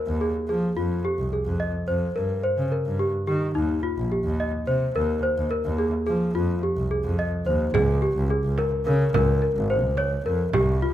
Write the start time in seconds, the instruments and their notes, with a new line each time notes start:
Already playing: celesta A#4
0.07 double bass D#2
0.21 celesta G#4
0.48 double bass F3, celesta G#4
0.76 double bass F2, celesta F4
1.05 celesta G4
1.18 double bass C2
1.33 celesta G#4
1.45 double bass F2
1.60 celesta D#5
1.87 double bass F2, celesta C5
2.15 double bass G2, celesta A#4
2.43 celesta C5
2.57 double bass C#3
2.72 celesta A#4
2.86 double bass G2
2.99 celesta G4
3.27 double bass D#3, celesta G4
3.55 double bass D#2, celesta D#4
3.83 celesta F4
3.97 double bass A#1
4.12 celesta G4
4.24 double bass D#2
4.40 celesta D#5
4.67 double bass C3, celesta C5
4.96 double bass D#2, celesta A#4
5.23 celesta C5
5.37 double bass D#2
5.51 celesta A#4
5.65 double bass D#2
5.78 celesta G#4
6.07 double bass F3, celesta G#4
6.34 double bass F2, celesta F4
6.63 celesta G4
6.76 double bass C2
6.91 celesta G#4
7.04 double bass F2
7.19 celesta D#5
7.46 double bass D#2, celesta C5
7.74 double bass C#2, celesta G#4, frame drum
8.02 celesta G4
8.16 double bass C#2
8.30 celesta G#4
8.44 double bass C#2
8.58 celesta A#4, frame drum
8.85 double bass C#3, celesta A#4
9.13 double bass C#2, celesta A#4, frame drum
9.42 celesta A#4
9.56 double bass G#1
9.70 celesta C5
9.84 double bass C#2
9.97 celesta C#5, frame drum
10.25 double bass F2, celesta A#4
10.53 double bass C2, celesta G4, frame drum
10.82 celesta F4